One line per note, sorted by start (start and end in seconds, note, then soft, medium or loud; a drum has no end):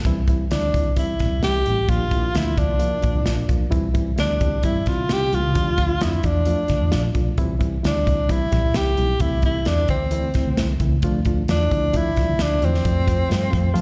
0.05 0.43 C2 medium
0.05 0.22 E3 loud
0.05 0.22 G3 medium
0.05 0.22 C4 medium
0.05 0.22 E4 loud
0.05 kick medium
0.05 closed hi-hat medium
0.28 0.45 E3 medium
0.28 0.45 G3 medium
0.28 0.45 C4 medium
0.28 0.45 E4 medium
0.28 kick medium
0.28 closed hi-hat medium
0.51 0.70 D2 medium
0.51 0.67 E3 medium
0.51 0.67 G3 medium
0.51 0.67 C4 medium
0.51 0.94 D4 medium
0.51 0.68 E4 medium
0.51 snare medium
0.51 closed hi-hat medium
0.74 1.02 C2 medium
0.74 0.90 E3 medium
0.74 0.90 G3 medium
0.74 0.90 C4 medium
0.74 0.90 E4 medium
0.74 kick medium
0.74 closed hi-hat medium
0.96 1.13 E3 medium
0.96 1.13 G3 medium
0.96 1.13 C4 medium
0.96 1.13 E4 medium
0.96 1.40 E4 medium
0.96 kick medium
0.96 closed hi-hat medium
1.19 1.29 A#1 medium
1.19 1.37 E3 medium
1.19 1.36 G3 medium
1.19 1.37 C4 medium
1.19 1.36 E4 medium
1.19 kick medium
1.19 snare soft
1.19 closed hi-hat medium
1.32 1.41 C2 medium
1.42 1.62 C2 medium
1.42 1.59 E3 medium
1.42 1.59 G3 medium
1.42 1.59 C4 medium
1.42 1.59 E4 medium
1.42 1.91 G4 loud
1.42 snare medium
1.42 closed hi-hat medium
1.66 1.85 A1 medium
1.66 1.82 E3 medium
1.66 1.82 G3 soft
1.66 1.82 C4 medium
1.66 1.82 E4 medium
1.66 closed hi-hat medium
1.88 2.26 A#1 medium
1.88 2.05 F3 medium
1.88 2.05 A#3 medium
1.88 2.05 D4 medium
1.88 2.05 F4 loud
1.88 2.38 F4 medium
1.88 kick loud
1.88 closed hi-hat medium
2.11 2.28 F3 medium
2.11 2.28 A#3 medium
2.11 2.28 D4 medium
2.11 2.28 E4 medium
2.11 kick medium
2.11 closed hi-hat medium
2.34 2.54 D2 medium
2.34 2.51 F3 medium
2.34 2.51 A#3 medium
2.34 2.51 D4 medium
2.34 2.60 E4 medium
2.34 2.51 F4 medium
2.34 snare loud
2.34 closed hi-hat medium
2.57 2.86 C2 medium
2.57 2.74 F3 medium
2.57 2.74 A#3 medium
2.57 2.74 D4 medium
2.57 3.50 D4 medium
2.57 2.74 F4 medium
2.57 kick medium
2.57 closed hi-hat medium
2.79 2.96 F3 medium
2.79 2.96 A#3 medium
2.79 2.96 D4 medium
2.79 2.96 F4 medium
2.79 closed hi-hat medium
3.02 3.13 A#1 medium
3.02 3.19 F3 medium
3.02 3.19 A#3 medium
3.02 3.19 D4 medium
3.02 3.19 F4 medium
3.02 kick medium
3.02 closed hi-hat medium
3.15 3.24 C2 medium
3.26 3.45 A#1 medium
3.26 3.42 F3 medium
3.26 3.43 A#3 medium
3.26 3.43 D4 medium
3.26 3.43 F4 medium
3.26 snare medium
3.26 closed hi-hat medium
3.48 3.68 B1 medium
3.48 3.65 F3 medium
3.48 3.65 A#3 medium
3.48 3.65 D4 medium
3.48 3.65 F4 medium
3.48 kick medium
3.48 closed hi-hat medium
3.71 4.10 C2 medium
3.71 3.88 E3 loud
3.71 3.88 G3 medium
3.71 3.88 C4 medium
3.71 3.88 E4 loud
3.71 kick loud
3.71 closed hi-hat medium
3.94 4.11 E3 medium
3.94 4.11 G3 medium
3.94 4.11 C4 medium
3.94 4.11 E4 medium
3.94 kick medium
3.94 closed hi-hat medium
4.16 4.37 D2 medium
4.16 4.33 E3 medium
4.16 4.34 G3 medium
4.16 4.34 C4 medium
4.16 4.62 D4 medium
4.16 4.33 E4 medium
4.16 snare loud
4.16 closed hi-hat medium
4.41 4.64 C2 medium
4.41 4.57 E3 medium
4.41 4.57 G3 medium
4.41 4.57 C4 medium
4.41 4.57 G4 medium
4.41 kick medium
4.41 closed hi-hat medium
4.63 4.83 G1 medium
4.63 4.80 E3 medium
4.63 4.80 G3 medium
4.63 4.80 C4 medium
4.63 4.80 E4 medium
4.63 4.90 E4 medium
4.63 kick medium
4.63 closed hi-hat medium
4.86 5.06 C3 medium
4.86 5.03 E3 medium
4.86 5.03 G3 medium
4.86 5.03 C4 medium
4.86 5.03 E4 medium
4.86 5.14 F4 medium
4.86 kick medium
4.86 snare soft
4.86 closed hi-hat medium
5.09 5.34 C3 medium
5.09 5.26 E3 medium
5.09 5.25 G3 medium
5.09 5.26 C4 medium
5.09 5.26 E4 medium
5.09 snare medium
5.09 closed hi-hat medium
5.13 5.36 G4 loud
5.33 5.51 C#2 medium
5.33 5.49 E3 medium
5.33 5.49 G3 medium
5.33 5.49 C4 medium
5.33 5.49 E4 medium
5.33 6.04 F4 medium
5.33 closed hi-hat medium
5.54 6.01 D2 medium
5.54 5.71 F3 medium
5.54 5.71 A3 medium
5.54 5.71 D4 medium
5.54 5.71 F4 medium
5.54 kick loud
5.54 closed hi-hat medium
5.77 5.94 F3 medium
5.77 5.94 A3 medium
5.77 5.94 D4 medium
5.77 5.94 F4 medium
5.77 kick medium
5.77 closed hi-hat medium
6.00 6.20 F2 medium
6.00 6.17 F3 medium
6.00 6.17 A3 medium
6.00 6.17 D4 medium
6.00 6.17 E4 medium
6.00 6.27 E4 medium
6.00 snare loud
6.00 closed hi-hat medium
6.23 6.52 E2 medium
6.23 6.40 F3 medium
6.23 6.40 A3 medium
6.23 6.40 D4 medium
6.23 7.16 D4 medium
6.23 6.40 F4 medium
6.23 kick medium
6.23 closed hi-hat medium
6.45 6.63 F3 medium
6.45 6.63 A3 medium
6.45 6.63 D4 medium
6.45 6.63 F4 loud
6.45 closed hi-hat medium
6.68 6.79 D2 medium
6.68 6.86 F3 medium
6.68 6.85 A3 medium
6.68 6.86 D4 medium
6.68 6.86 F4 medium
6.68 kick medium
6.68 snare soft
6.68 closed hi-hat medium
6.81 6.91 E2 medium
6.91 7.11 A#1 medium
6.91 7.08 F3 medium
6.91 7.08 A3 medium
6.91 7.08 D4 medium
6.91 7.08 F4 medium
6.91 snare medium
6.91 closed hi-hat medium
7.14 7.34 B1 medium
7.14 7.31 F3 medium
7.14 7.31 A3 medium
7.14 7.31 D4 medium
7.14 7.31 F4 medium
7.14 kick medium
7.14 closed hi-hat medium
7.38 7.75 C2 medium
7.38 7.54 E3 loud
7.38 7.54 G3 medium
7.38 7.54 C4 loud
7.38 7.54 E4 loud
7.38 kick medium
7.38 closed hi-hat medium
7.59 7.76 E3 medium
7.59 7.76 G3 medium
7.59 7.76 C4 medium
7.59 7.76 E4 medium
7.59 kick medium
7.59 closed hi-hat medium
7.83 8.03 D2 medium
7.83 8.00 E3 medium
7.83 8.00 G3 medium
7.83 8.00 C4 medium
7.83 8.00 E4 medium
7.83 snare loud
7.83 closed hi-hat medium
7.87 8.33 D4 medium
8.06 8.35 C2 medium
8.06 8.22 E3 medium
8.06 8.23 G3 medium
8.06 8.23 C4 medium
8.06 8.23 E4 medium
8.06 kick medium
8.06 closed hi-hat medium
8.29 8.45 E3 medium
8.29 8.45 G3 medium
8.29 8.45 C4 medium
8.29 8.45 E4 loud
8.29 8.78 E4 medium
8.29 kick medium
8.29 closed hi-hat medium
8.52 8.62 A#1 medium
8.52 8.68 E3 medium
8.52 8.68 G3 medium
8.52 8.68 C4 medium
8.52 8.68 G4 medium
8.52 kick medium
8.52 snare soft
8.52 closed hi-hat medium
8.64 8.73 C2 medium
8.74 8.94 C2 medium
8.74 8.91 E3 medium
8.74 8.91 G3 medium
8.74 8.91 C4 medium
8.74 8.91 E4 medium
8.74 9.23 G4 medium
8.74 snare loud
8.74 closed hi-hat medium
8.97 9.17 B1 medium
8.97 9.14 E3 medium
8.97 9.14 G3 medium
8.97 9.14 C4 medium
8.97 9.14 E4 medium
8.97 closed hi-hat medium
9.20 9.58 C2 loud
9.20 9.37 E3 medium
9.20 9.37 A3 medium
9.20 9.37 C4 medium
9.20 9.44 E4 medium
9.20 9.37 E4 loud
9.20 kick loud
9.20 closed hi-hat medium
9.42 9.60 E3 medium
9.42 9.60 A3 medium
9.42 9.60 C4 medium
9.42 9.59 E4 medium
9.42 9.69 E4 medium
9.42 kick medium
9.42 closed hi-hat medium
9.65 9.85 E2 medium
9.65 9.82 E3 medium
9.65 9.82 A3 medium
9.65 9.82 C4 medium
9.65 9.89 D4 medium
9.65 9.82 E4 medium
9.65 snare loud
9.65 closed hi-hat medium
9.88 10.17 D2 medium
9.88 10.05 E3 medium
9.88 10.05 A3 medium
9.88 10.05 C4 medium
9.88 10.76 C4 medium
9.88 10.05 E4 medium
9.88 kick medium
9.88 closed hi-hat medium
10.11 10.28 E3 medium
10.11 10.28 A3 medium
10.11 10.28 C4 medium
10.11 10.28 E4 medium
10.11 closed hi-hat medium
10.34 10.44 C2 medium
10.34 10.51 E3 medium
10.34 10.51 A3 medium
10.34 10.51 C4 medium
10.34 10.51 E4 medium
10.34 kick medium
10.34 snare soft
10.34 closed hi-hat medium
10.46 10.55 D2 medium
10.57 10.76 C2 medium
10.57 10.73 E3 medium
10.57 10.73 A3 medium
10.57 10.73 C4 medium
10.57 10.73 E4 medium
10.57 snare medium
10.57 closed hi-hat medium
10.80 10.98 C#2 medium
10.80 10.96 E3 medium
10.80 10.96 A3 medium
10.80 10.96 C4 medium
10.80 10.96 E4 medium
10.80 kick medium
10.80 closed hi-hat medium
11.02 11.40 D2 medium
11.02 11.19 F3 loud
11.02 11.20 A3 medium
11.02 11.20 D4 medium
11.02 11.20 F4 loud
11.02 kick loud
11.02 closed hi-hat medium
11.25 11.42 F3 medium
11.25 11.42 A3 medium
11.25 11.42 D4 medium
11.25 11.42 F4 medium
11.25 kick medium
11.25 closed hi-hat medium
11.48 11.67 E2 medium
11.48 11.64 F3 medium
11.48 11.64 A3 medium
11.48 11.64 D4 medium
11.48 11.98 D4 medium
11.48 11.64 F4 medium
11.48 snare loud
11.48 closed hi-hat medium
11.71 11.99 D2 medium
11.71 11.88 F3 medium
11.71 11.88 A3 medium
11.71 11.88 D4 medium
11.71 11.88 E4 medium
11.71 kick medium
11.71 closed hi-hat medium
11.93 12.10 F3 medium
11.93 12.10 A3 medium
11.93 12.10 D4 medium
11.93 12.44 E4 loud
11.93 12.10 F4 loud
11.93 kick medium
11.93 closed hi-hat medium
12.16 12.26 C2 medium
12.16 12.33 F3 medium
12.16 12.33 A3 medium
12.16 12.33 D4 medium
12.16 12.33 F4 medium
12.16 kick medium
12.16 snare soft
12.16 closed hi-hat medium
12.29 12.37 D2 medium
12.39 12.58 D2 medium
12.39 12.56 F3 medium
12.39 12.55 A3 medium
12.39 12.55 D4 medium
12.39 12.66 D4 medium
12.39 12.55 F4 medium
12.39 snare medium
12.39 closed hi-hat medium
12.61 12.80 E2 medium
12.61 12.78 F3 medium
12.61 12.78 A3 medium
12.61 13.81 C4 medium
12.61 12.78 D4 medium
12.61 12.78 F4 medium
12.61 closed hi-hat medium
12.74 snare soft
12.85 13.22 F2 loud
12.85 13.01 F3 medium
12.85 13.01 A3 medium
12.85 13.01 C4 medium
12.85 13.01 F4 loud
12.85 kick loud
12.85 closed hi-hat medium
13.07 13.23 F3 medium
13.07 13.23 A3 medium
13.07 13.23 C4 medium
13.07 13.23 F4 medium
13.07 kick medium
13.07 closed hi-hat medium
13.29 13.49 G2 medium
13.29 13.45 F3 medium
13.29 13.46 A3 medium
13.29 13.46 C4 medium
13.29 13.45 F4 medium
13.29 snare loud
13.29 closed hi-hat medium
13.50 13.71 F2 medium
13.50 13.68 F3 medium
13.50 13.67 A3 medium
13.50 13.67 C4 medium
13.50 13.68 F4 medium
13.50 kick medium
13.50 closed hi-hat medium
13.74 13.81 F3 loud
13.74 13.81 F3 medium
13.74 13.81 A3 medium
13.74 13.81 C4 loud
13.74 13.81 F4 loud
13.74 closed hi-hat medium